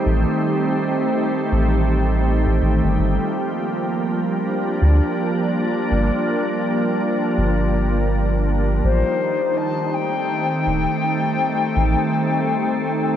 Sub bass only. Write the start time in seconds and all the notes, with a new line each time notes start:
0.06 A1
1.52 A1
2.47 A1
2.62 A1
2.84 G1
2.99 G1
4.82 D2
5.91 G1
7.38 G1
8.84 A1
10.66 D#1
11.76 A1